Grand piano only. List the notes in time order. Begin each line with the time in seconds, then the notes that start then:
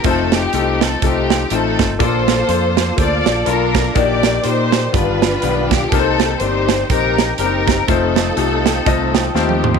0.04 A3 C4 D#4 F4 C5
0.54 A3 C4 D#4 F4 A4
1.02 A3 C4 D#4 F4 A4
1.51 A3 C4 D#4 F4 C5
1.99 A#2 A#3 D4 F4 A4 D5
2.48 A#3 D4 F4 A4 C5
2.96 A#3 C#4 F4 A4 C5
3.02 D4
3.46 A#3 D4 F4 F5 A5
3.95 A#2 A#3 D4 D#4 F#4 D5
4.02 G4
4.43 A#3 D#4 G4 D5
4.93 G2 D#3 B3 F4 G4 D5
5.42 D#3 B3 F4 G4 D5
5.92 C3 A#3 C4 D#4 G4 A#4
6.00 C5
6.41 A#3 C4 D4 G4 D5
6.47 D#4
6.90 A#3 C4 D#4 G4 C5
7.39 A#3 C4 D4 G4 A#4
7.46 D#4
7.88 A3 C4 D#4 F4 C5
8.37 A3 C4 D#4 F4 G4
8.66 G5
8.86 A3 C4 D#4 F4 D#5 F5
9.14 G5
9.35 A3 C4 D#4 F4 C5 A5
9.64 C6